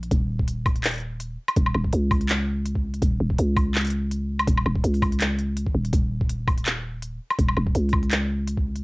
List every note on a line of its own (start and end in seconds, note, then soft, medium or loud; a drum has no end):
0.03 closed hi-hat soft
0.11 1.37 D#1 loud
0.11 kick loud
0.11 closed hi-hat medium
0.39 kick medium
0.48 closed hi-hat medium
0.66 kick loud
0.66 open hi-hat soft
0.66 low woodblock medium
0.76 closed hi-hat soft
0.84 clap loud
0.84 closed hi-hat medium
0.86 closed hi-hat medium
0.89 closed hi-hat soft
0.91 closed hi-hat soft
0.94 closed hi-hat soft
0.96 closed hi-hat soft
0.98 closed hi-hat soft
1.00 closed hi-hat soft
1.20 closed hi-hat medium
1.48 closed hi-hat soft
1.48 low woodblock medium
1.57 1.74 D#1 loud
1.57 kick loud
1.57 closed hi-hat medium
1.67 low woodblock medium
1.75 1.92 D#1 loud
1.75 low woodblock soft
1.85 kick medium
1.93 3.01 C#2 loud
1.93 closed hi-hat medium
2.11 kick loud
2.11 open hi-hat soft
2.11 low woodblock medium
2.21 closed hi-hat soft
2.29 clap loud
2.29 closed hi-hat medium
2.66 closed hi-hat medium
2.76 kick medium
2.94 closed hi-hat soft
3.02 3.19 D#1 loud
3.02 kick loud
3.02 closed hi-hat medium
3.20 3.37 D#1 loud
3.30 kick medium
3.38 4.47 C#2 loud
3.38 closed hi-hat medium
3.57 kick loud
3.57 open hi-hat soft
3.57 low woodblock medium
3.75 clap loud
3.75 closed hi-hat soft
3.78 closed hi-hat soft
3.81 closed hi-hat soft
3.85 closed hi-hat medium
3.87 closed hi-hat medium
3.90 closed hi-hat medium
4.11 closed hi-hat medium
4.39 closed hi-hat soft
4.39 low woodblock medium
4.47 4.64 D#1 loud
4.47 kick loud
4.47 closed hi-hat medium
4.58 low woodblock medium
4.66 4.83 D#1 loud
4.66 low woodblock soft
4.76 kick medium
4.84 5.68 C#2 loud
4.84 closed hi-hat medium
4.94 open hi-hat soft
5.02 kick loud
5.02 open hi-hat soft
5.02 low woodblock medium
5.12 closed hi-hat soft
5.20 clap loud
5.20 closed hi-hat medium
5.38 closed hi-hat soft
5.57 closed hi-hat medium
5.66 5.74 G#1 medium
5.66 kick medium
5.75 5.92 D#1 loud
5.85 closed hi-hat soft
5.93 7.19 D#1 loud
5.93 kick loud
5.93 closed hi-hat medium
6.21 kick medium
6.29 closed hi-hat medium
6.47 kick loud
6.47 open hi-hat soft
6.47 low woodblock medium
6.58 closed hi-hat soft
6.66 clap loud
6.66 closed hi-hat medium
7.02 closed hi-hat medium
7.30 closed hi-hat soft
7.30 low woodblock medium
7.38 7.55 D#1 loud
7.38 kick loud
7.38 closed hi-hat medium
7.48 low woodblock medium
7.57 7.74 D#1 loud
7.57 low woodblock soft
7.66 kick medium
7.75 8.83 C#2 loud
7.75 closed hi-hat medium
7.89 open hi-hat soft
7.89 low woodblock medium
7.93 kick loud
8.03 closed hi-hat soft
8.11 clap loud
8.11 closed hi-hat medium
8.47 closed hi-hat medium
8.57 kick medium
8.76 closed hi-hat soft